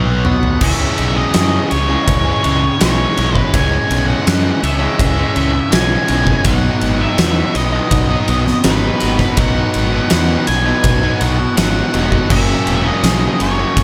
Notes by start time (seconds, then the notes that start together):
Already playing: B1 B2 F#3 B3 D#4 D#5 F#5
0.25 B2 F#3 B3, mid tom
0.43 floor tom
0.61 C#2 C#3 E3 G#3 C#4 E5, kick, crash
0.98 B1, ride
1.17 E3 G#3 C#4 D#5
1.34 F#2 C#3 E3 G#3 C#4, snare, ride
1.70 C#2 C#3 E3 G#3 C#4 C#5, muted overdriven electric guitar stroke, ride
1.88 E3 G#3 C#4, muted distorted electric guitar stroke
2.08 C#2, kick, ride
2.25 E3 G#3 C#4
2.43 C#2 C#3 E3 G#3 C#4, ride
2.62 muted overdriven electric guitar stroke, muted distorted electric guitar stroke
2.79 B1 C#3 E3 G#3 C#4 C#5, snare, ride
3.17 B1 C#3 E3 G#3 C#4, ride
3.35 E3 G#3 C#4 B4, kick
3.53 C#2 C#3 E3 G#3 C#4 G#5, kick, ride
3.91 B1, ride
4.07 E3 G#3 C#4 F#5
4.25 F#2 C#3 E3 G#3 C#4, snare, ride
4.61 C#2 C#3 E3 G#3 C#4 E5, muted overdriven electric guitar stroke, ride
4.79 E3 G#3 C#4, muted distorted electric guitar stroke
4.99 C#2, kick, ride
5.16 E3 G#3 C#4
5.35 C#2 C#3 E3 G#3 C#4, ride
5.53 muted overdriven electric guitar stroke, muted distorted electric guitar stroke
5.71 B1 C#3 E3 G#3 C#4 G#5, snare, ride
6.08 B1 C#3 E3 G#3 C#4, ride
6.27 E3 G#3 C#4, kick
6.45 B1 B2 F#3 B3 D#4 F#5, kick, ride
6.81 G#1, ride
6.99 F#3 B3 D#4 E5
7.18 E2 B2 F#3 B3 D#4, snare, ride
7.54 B1 B2 F#3 B3 D#4 D#5, muted overdriven electric guitar stroke, ride
7.72 F#3 B3 D#4, muted distorted electric guitar stroke
7.91 B1, kick, ride
8.10 F#3 B3 D#4
8.28 B1 B2 F#3 B3 D#4, ride
8.46 muted distorted electric guitar stroke, muted overdriven electric guitar stroke, snare
8.64 G#1 B2 F#3 B3 D#4 B4, snare, ride
9.00 G#1 B2 F#3 B3 D#4, ride
9.19 F#3 B3 D#4, kick, snare
9.37 B1 B2 F#3 B3 D#4 F#5, kick, ride
9.74 G#1, ride
9.92 F#3 B3 D#4
10.10 E2 B2 F#3 B3 D#4 F#5, snare, ride
10.46 B1 B2 F#3 B3 D#4 G#5, muted overdriven electric guitar stroke, ride
10.65 F#3 B3 D#4, muted distorted electric guitar stroke
10.84 B1, kick, ride
11.03 F#3 B3 D#4
11.20 B1 B2 F#3 B3 D#4 F#5, ride
11.37 muted distorted electric guitar stroke, muted overdriven electric guitar stroke
11.57 G#1 B2 F#3 B3 D#4 F#5, snare, ride
11.94 E1 B2 F#3 B3 D#4, ride
12.11 F#3 B3 D#4, kick
12.29 F#1 F#2 C#3 F#3 A#3 C#4 E5, kick, crash
12.67 E1, ride
12.84 F#3 A#3 C#4 D#5
13.03 B1 F#2 C#3 F#3 A#3 C#4, snare, ride
13.40 F#1 C#3 F#3 A#3 C#4 C#5, muted overdriven electric guitar stroke, ride
13.58 F#3 A#3 C#4, muted distorted electric guitar stroke
13.77 F#1, kick, ride